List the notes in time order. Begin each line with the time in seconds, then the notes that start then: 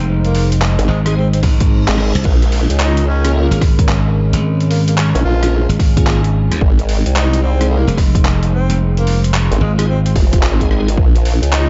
Already playing: F1 G#3 D#4 C5
0.24 A#3, closed hi-hat
0.35 open hi-hat
0.52 closed hi-hat
0.62 clap
0.79 G#1, closed hi-hat
0.88 G#1 G#3, clap
1.06 G#3 C4 D#4 G#4, cross-stick, closed hi-hat
1.16 C4, reverse cymbal
1.33 C4, closed hi-hat
1.43 G#1, kick, open hi-hat
1.60 kick, closed hi-hat
1.88 G#1 G#3 C4 D#4 G#4, clap, closed hi-hat
1.97 G#3 C4 D#4 G#4, cross-stick
2.15 C2, closed hi-hat
2.24 A#1 C#4 A#4, kick, crash
2.42 closed hi-hat
2.52 open hi-hat
2.70 C#2, closed hi-hat
2.79 D#4, clap
2.97 closed hi-hat
3.07 C#4
3.24 A#3 C#4 F4 G#4, cross-stick, closed hi-hat
3.34 A#3
3.51 G#1 A#3 C#4 F4 G#4, closed hi-hat
3.61 kick, cross-stick, open hi-hat
3.79 kick, closed hi-hat
3.89 clap
4.33 G#1, closed hi-hat
4.43 G#4
4.61 closed hi-hat
4.70 A#3, open hi-hat
4.88 A#3, closed hi-hat
4.97 C#4, clap
5.14 A#1 C#4, closed hi-hat
5.24 A#1 F4
5.43 A#3 C#4 F4 G#4, cross-stick, closed hi-hat
5.69 G#1, closed hi-hat
5.79 kick, open hi-hat
5.97 A#3 C#4 F4 G#4, kick, closed hi-hat
6.07 clap
6.24 closed hi-hat
6.51 D#2, cross-stick, closed hi-hat
6.61 G#1 D#4 C5, kick
6.79 closed hi-hat
6.89 open hi-hat
7.06 C2, closed hi-hat
7.15 D#4, clap
7.33 closed hi-hat
7.42 C4
7.61 G#3 C4 D#4 G#4, cross-stick, closed hi-hat
7.69 A#3
7.87 F1 G#3 C4 D#4 G#4, closed hi-hat
7.98 kick, cross-stick, open hi-hat
8.15 kick, closed hi-hat
8.25 clap
8.43 closed hi-hat
8.52 C4
8.69 F1, closed hi-hat
8.80 F4
8.97 A#3, closed hi-hat
9.07 open hi-hat
9.24 closed hi-hat
9.34 clap
9.51 G#1, closed hi-hat
9.61 G#1 G#3
9.78 G#3 C4 D#4 G#4, cross-stick, closed hi-hat
9.88 C4
10.05 C4, closed hi-hat
10.16 F1, kick, open hi-hat
10.33 kick, closed hi-hat
10.43 G#1, clap
10.60 G#3 C4 D#4 G#4, kick, closed hi-hat
10.71 G#3 C4 D#4 G#4, cross-stick
10.88 closed hi-hat
10.97 A#1 G#3 C#4 A#4, kick
11.16 closed hi-hat
11.25 open hi-hat
11.42 C#2, closed hi-hat
11.52 D#4, clap